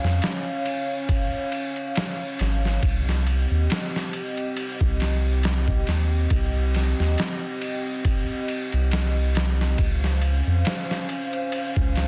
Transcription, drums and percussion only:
0, 0, Header, 1, 2, 480
1, 0, Start_track
1, 0, Tempo, 869565
1, 1563, Time_signature, 4, 2, 24, 8
1, 6667, End_track
2, 0, Start_track
2, 0, Title_t, "Drums"
2, 24, Note_on_c, 9, 38, 37
2, 80, Note_off_c, 9, 38, 0
2, 121, Note_on_c, 9, 51, 88
2, 131, Note_on_c, 9, 38, 114
2, 176, Note_off_c, 9, 51, 0
2, 186, Note_off_c, 9, 38, 0
2, 362, Note_on_c, 9, 51, 72
2, 417, Note_off_c, 9, 51, 0
2, 601, Note_on_c, 9, 36, 108
2, 602, Note_on_c, 9, 51, 84
2, 656, Note_off_c, 9, 36, 0
2, 657, Note_off_c, 9, 51, 0
2, 839, Note_on_c, 9, 51, 67
2, 894, Note_off_c, 9, 51, 0
2, 972, Note_on_c, 9, 51, 39
2, 1027, Note_off_c, 9, 51, 0
2, 1079, Note_on_c, 9, 51, 86
2, 1089, Note_on_c, 9, 38, 110
2, 1135, Note_off_c, 9, 51, 0
2, 1144, Note_off_c, 9, 38, 0
2, 1321, Note_on_c, 9, 51, 70
2, 1331, Note_on_c, 9, 38, 44
2, 1376, Note_off_c, 9, 51, 0
2, 1386, Note_off_c, 9, 38, 0
2, 1465, Note_on_c, 9, 38, 36
2, 1520, Note_off_c, 9, 38, 0
2, 1560, Note_on_c, 9, 36, 114
2, 1560, Note_on_c, 9, 51, 83
2, 1615, Note_off_c, 9, 36, 0
2, 1615, Note_off_c, 9, 51, 0
2, 1705, Note_on_c, 9, 38, 44
2, 1760, Note_off_c, 9, 38, 0
2, 1803, Note_on_c, 9, 51, 65
2, 1858, Note_off_c, 9, 51, 0
2, 2042, Note_on_c, 9, 51, 86
2, 2052, Note_on_c, 9, 38, 123
2, 2097, Note_off_c, 9, 51, 0
2, 2107, Note_off_c, 9, 38, 0
2, 2187, Note_on_c, 9, 38, 54
2, 2242, Note_off_c, 9, 38, 0
2, 2280, Note_on_c, 9, 51, 69
2, 2336, Note_off_c, 9, 51, 0
2, 2414, Note_on_c, 9, 51, 45
2, 2470, Note_off_c, 9, 51, 0
2, 2520, Note_on_c, 9, 51, 91
2, 2576, Note_off_c, 9, 51, 0
2, 2654, Note_on_c, 9, 36, 92
2, 2709, Note_off_c, 9, 36, 0
2, 2760, Note_on_c, 9, 51, 68
2, 2770, Note_on_c, 9, 38, 52
2, 2815, Note_off_c, 9, 51, 0
2, 2825, Note_off_c, 9, 38, 0
2, 2999, Note_on_c, 9, 51, 86
2, 3009, Note_on_c, 9, 38, 117
2, 3054, Note_off_c, 9, 51, 0
2, 3064, Note_off_c, 9, 38, 0
2, 3134, Note_on_c, 9, 36, 98
2, 3189, Note_off_c, 9, 36, 0
2, 3240, Note_on_c, 9, 51, 69
2, 3250, Note_on_c, 9, 38, 50
2, 3295, Note_off_c, 9, 51, 0
2, 3305, Note_off_c, 9, 38, 0
2, 3479, Note_on_c, 9, 51, 89
2, 3480, Note_on_c, 9, 36, 112
2, 3535, Note_off_c, 9, 51, 0
2, 3536, Note_off_c, 9, 36, 0
2, 3723, Note_on_c, 9, 51, 69
2, 3733, Note_on_c, 9, 38, 38
2, 3778, Note_off_c, 9, 51, 0
2, 3788, Note_off_c, 9, 38, 0
2, 3864, Note_on_c, 9, 38, 35
2, 3919, Note_off_c, 9, 38, 0
2, 3963, Note_on_c, 9, 51, 86
2, 3973, Note_on_c, 9, 38, 120
2, 4018, Note_off_c, 9, 51, 0
2, 4028, Note_off_c, 9, 38, 0
2, 4203, Note_on_c, 9, 51, 70
2, 4258, Note_off_c, 9, 51, 0
2, 4442, Note_on_c, 9, 36, 113
2, 4442, Note_on_c, 9, 51, 88
2, 4497, Note_off_c, 9, 36, 0
2, 4498, Note_off_c, 9, 51, 0
2, 4682, Note_on_c, 9, 51, 66
2, 4738, Note_off_c, 9, 51, 0
2, 4816, Note_on_c, 9, 51, 43
2, 4871, Note_off_c, 9, 51, 0
2, 4921, Note_on_c, 9, 51, 94
2, 4931, Note_on_c, 9, 38, 121
2, 4976, Note_off_c, 9, 51, 0
2, 4986, Note_off_c, 9, 38, 0
2, 5162, Note_on_c, 9, 51, 71
2, 5172, Note_on_c, 9, 38, 101
2, 5217, Note_off_c, 9, 51, 0
2, 5227, Note_off_c, 9, 38, 0
2, 5305, Note_on_c, 9, 38, 50
2, 5361, Note_off_c, 9, 38, 0
2, 5399, Note_on_c, 9, 51, 85
2, 5401, Note_on_c, 9, 36, 110
2, 5454, Note_off_c, 9, 51, 0
2, 5456, Note_off_c, 9, 36, 0
2, 5542, Note_on_c, 9, 38, 44
2, 5597, Note_off_c, 9, 38, 0
2, 5639, Note_on_c, 9, 51, 69
2, 5694, Note_off_c, 9, 51, 0
2, 5879, Note_on_c, 9, 51, 94
2, 5889, Note_on_c, 9, 38, 112
2, 5934, Note_off_c, 9, 51, 0
2, 5944, Note_off_c, 9, 38, 0
2, 6022, Note_on_c, 9, 38, 52
2, 6078, Note_off_c, 9, 38, 0
2, 6121, Note_on_c, 9, 51, 70
2, 6177, Note_off_c, 9, 51, 0
2, 6254, Note_on_c, 9, 51, 48
2, 6309, Note_off_c, 9, 51, 0
2, 6360, Note_on_c, 9, 51, 89
2, 6415, Note_off_c, 9, 51, 0
2, 6494, Note_on_c, 9, 36, 97
2, 6549, Note_off_c, 9, 36, 0
2, 6599, Note_on_c, 9, 51, 65
2, 6609, Note_on_c, 9, 38, 51
2, 6654, Note_off_c, 9, 51, 0
2, 6664, Note_off_c, 9, 38, 0
2, 6667, End_track
0, 0, End_of_file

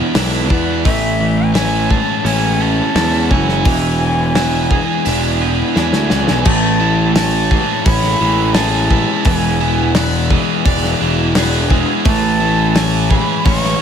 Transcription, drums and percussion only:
0, 0, Header, 1, 2, 480
1, 0, Start_track
1, 0, Key_signature, 3, "major"
1, 0, Tempo, 700117
1, 583, Time_signature, 4, 2, 24, 8
1, 9474, End_track
2, 0, Start_track
2, 0, Title_t, "Drums"
2, 103, Note_on_c, 9, 38, 122
2, 103, Note_on_c, 9, 46, 63
2, 171, Note_off_c, 9, 46, 0
2, 172, Note_off_c, 9, 38, 0
2, 345, Note_on_c, 9, 36, 87
2, 413, Note_off_c, 9, 36, 0
2, 585, Note_on_c, 9, 36, 110
2, 585, Note_on_c, 9, 46, 60
2, 654, Note_off_c, 9, 36, 0
2, 654, Note_off_c, 9, 46, 0
2, 1063, Note_on_c, 9, 46, 50
2, 1064, Note_on_c, 9, 38, 110
2, 1132, Note_off_c, 9, 38, 0
2, 1132, Note_off_c, 9, 46, 0
2, 1306, Note_on_c, 9, 36, 82
2, 1374, Note_off_c, 9, 36, 0
2, 1550, Note_on_c, 9, 46, 63
2, 1618, Note_off_c, 9, 46, 0
2, 2027, Note_on_c, 9, 46, 53
2, 2028, Note_on_c, 9, 38, 127
2, 2096, Note_off_c, 9, 38, 0
2, 2096, Note_off_c, 9, 46, 0
2, 2268, Note_on_c, 9, 36, 80
2, 2336, Note_off_c, 9, 36, 0
2, 2391, Note_on_c, 9, 38, 34
2, 2459, Note_off_c, 9, 38, 0
2, 2504, Note_on_c, 9, 46, 59
2, 2506, Note_on_c, 9, 36, 117
2, 2573, Note_off_c, 9, 46, 0
2, 2574, Note_off_c, 9, 36, 0
2, 2985, Note_on_c, 9, 38, 109
2, 2985, Note_on_c, 9, 46, 53
2, 3053, Note_off_c, 9, 46, 0
2, 3054, Note_off_c, 9, 38, 0
2, 3227, Note_on_c, 9, 36, 86
2, 3295, Note_off_c, 9, 36, 0
2, 3466, Note_on_c, 9, 46, 59
2, 3534, Note_off_c, 9, 46, 0
2, 3948, Note_on_c, 9, 38, 67
2, 4017, Note_off_c, 9, 38, 0
2, 4064, Note_on_c, 9, 38, 59
2, 4132, Note_off_c, 9, 38, 0
2, 4183, Note_on_c, 9, 38, 91
2, 4252, Note_off_c, 9, 38, 0
2, 4303, Note_on_c, 9, 38, 89
2, 4372, Note_off_c, 9, 38, 0
2, 4423, Note_on_c, 9, 49, 125
2, 4428, Note_on_c, 9, 36, 113
2, 4492, Note_off_c, 9, 49, 0
2, 4496, Note_off_c, 9, 36, 0
2, 4906, Note_on_c, 9, 38, 107
2, 4906, Note_on_c, 9, 46, 63
2, 4974, Note_off_c, 9, 46, 0
2, 4975, Note_off_c, 9, 38, 0
2, 5149, Note_on_c, 9, 36, 84
2, 5217, Note_off_c, 9, 36, 0
2, 5386, Note_on_c, 9, 46, 63
2, 5388, Note_on_c, 9, 36, 123
2, 5455, Note_off_c, 9, 46, 0
2, 5457, Note_off_c, 9, 36, 0
2, 5504, Note_on_c, 9, 38, 33
2, 5572, Note_off_c, 9, 38, 0
2, 5858, Note_on_c, 9, 46, 64
2, 5859, Note_on_c, 9, 38, 114
2, 5927, Note_off_c, 9, 46, 0
2, 5928, Note_off_c, 9, 38, 0
2, 6105, Note_on_c, 9, 36, 77
2, 6174, Note_off_c, 9, 36, 0
2, 6340, Note_on_c, 9, 46, 68
2, 6345, Note_on_c, 9, 36, 114
2, 6408, Note_off_c, 9, 46, 0
2, 6414, Note_off_c, 9, 36, 0
2, 6820, Note_on_c, 9, 38, 116
2, 6820, Note_on_c, 9, 46, 61
2, 6888, Note_off_c, 9, 46, 0
2, 6889, Note_off_c, 9, 38, 0
2, 7065, Note_on_c, 9, 36, 80
2, 7134, Note_off_c, 9, 36, 0
2, 7305, Note_on_c, 9, 36, 121
2, 7305, Note_on_c, 9, 46, 78
2, 7374, Note_off_c, 9, 36, 0
2, 7374, Note_off_c, 9, 46, 0
2, 7429, Note_on_c, 9, 38, 36
2, 7497, Note_off_c, 9, 38, 0
2, 7783, Note_on_c, 9, 38, 120
2, 7783, Note_on_c, 9, 46, 68
2, 7851, Note_off_c, 9, 46, 0
2, 7852, Note_off_c, 9, 38, 0
2, 8024, Note_on_c, 9, 36, 83
2, 8093, Note_off_c, 9, 36, 0
2, 8262, Note_on_c, 9, 46, 66
2, 8265, Note_on_c, 9, 36, 121
2, 8331, Note_off_c, 9, 46, 0
2, 8334, Note_off_c, 9, 36, 0
2, 8745, Note_on_c, 9, 46, 62
2, 8746, Note_on_c, 9, 38, 120
2, 8814, Note_off_c, 9, 38, 0
2, 8814, Note_off_c, 9, 46, 0
2, 8985, Note_on_c, 9, 36, 86
2, 9054, Note_off_c, 9, 36, 0
2, 9224, Note_on_c, 9, 46, 70
2, 9226, Note_on_c, 9, 36, 118
2, 9292, Note_off_c, 9, 46, 0
2, 9294, Note_off_c, 9, 36, 0
2, 9348, Note_on_c, 9, 38, 37
2, 9417, Note_off_c, 9, 38, 0
2, 9474, End_track
0, 0, End_of_file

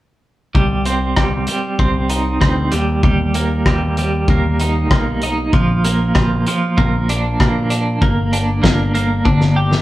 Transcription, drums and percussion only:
0, 0, Header, 1, 2, 480
1, 0, Start_track
1, 0, Tempo, 621118
1, 428, Time_signature, 4, 2, 24, 8
1, 7587, End_track
2, 0, Start_track
2, 0, Title_t, "Drums"
2, 425, Note_on_c, 9, 36, 86
2, 502, Note_off_c, 9, 36, 0
2, 660, Note_on_c, 9, 42, 68
2, 737, Note_off_c, 9, 42, 0
2, 900, Note_on_c, 9, 37, 91
2, 903, Note_on_c, 9, 36, 83
2, 977, Note_off_c, 9, 37, 0
2, 980, Note_off_c, 9, 36, 0
2, 1136, Note_on_c, 9, 42, 63
2, 1213, Note_off_c, 9, 42, 0
2, 1383, Note_on_c, 9, 36, 87
2, 1461, Note_off_c, 9, 36, 0
2, 1619, Note_on_c, 9, 42, 71
2, 1696, Note_off_c, 9, 42, 0
2, 1866, Note_on_c, 9, 36, 83
2, 1867, Note_on_c, 9, 37, 84
2, 1943, Note_off_c, 9, 36, 0
2, 1944, Note_off_c, 9, 37, 0
2, 2099, Note_on_c, 9, 42, 69
2, 2177, Note_off_c, 9, 42, 0
2, 2344, Note_on_c, 9, 36, 94
2, 2421, Note_off_c, 9, 36, 0
2, 2584, Note_on_c, 9, 42, 69
2, 2661, Note_off_c, 9, 42, 0
2, 2827, Note_on_c, 9, 36, 87
2, 2827, Note_on_c, 9, 37, 89
2, 2904, Note_off_c, 9, 36, 0
2, 2904, Note_off_c, 9, 37, 0
2, 3070, Note_on_c, 9, 42, 58
2, 3147, Note_off_c, 9, 42, 0
2, 3308, Note_on_c, 9, 36, 85
2, 3386, Note_off_c, 9, 36, 0
2, 3551, Note_on_c, 9, 42, 63
2, 3629, Note_off_c, 9, 42, 0
2, 3792, Note_on_c, 9, 36, 89
2, 3793, Note_on_c, 9, 37, 89
2, 3870, Note_off_c, 9, 36, 0
2, 3871, Note_off_c, 9, 37, 0
2, 4031, Note_on_c, 9, 42, 61
2, 4108, Note_off_c, 9, 42, 0
2, 4274, Note_on_c, 9, 36, 94
2, 4351, Note_off_c, 9, 36, 0
2, 4517, Note_on_c, 9, 42, 73
2, 4594, Note_off_c, 9, 42, 0
2, 4752, Note_on_c, 9, 37, 91
2, 4755, Note_on_c, 9, 36, 94
2, 4829, Note_off_c, 9, 37, 0
2, 4833, Note_off_c, 9, 36, 0
2, 4996, Note_on_c, 9, 42, 66
2, 5074, Note_off_c, 9, 42, 0
2, 5237, Note_on_c, 9, 36, 85
2, 5315, Note_off_c, 9, 36, 0
2, 5481, Note_on_c, 9, 42, 69
2, 5558, Note_off_c, 9, 42, 0
2, 5719, Note_on_c, 9, 36, 85
2, 5721, Note_on_c, 9, 37, 88
2, 5796, Note_off_c, 9, 36, 0
2, 5798, Note_off_c, 9, 37, 0
2, 5953, Note_on_c, 9, 42, 70
2, 6030, Note_off_c, 9, 42, 0
2, 6196, Note_on_c, 9, 36, 90
2, 6274, Note_off_c, 9, 36, 0
2, 6437, Note_on_c, 9, 42, 73
2, 6514, Note_off_c, 9, 42, 0
2, 6674, Note_on_c, 9, 36, 84
2, 6677, Note_on_c, 9, 38, 94
2, 6751, Note_off_c, 9, 36, 0
2, 6754, Note_off_c, 9, 38, 0
2, 6917, Note_on_c, 9, 42, 63
2, 6994, Note_off_c, 9, 42, 0
2, 7150, Note_on_c, 9, 48, 45
2, 7151, Note_on_c, 9, 36, 88
2, 7227, Note_off_c, 9, 48, 0
2, 7229, Note_off_c, 9, 36, 0
2, 7270, Note_on_c, 9, 38, 39
2, 7348, Note_off_c, 9, 38, 0
2, 7508, Note_on_c, 9, 38, 48
2, 7585, Note_off_c, 9, 38, 0
2, 7587, End_track
0, 0, End_of_file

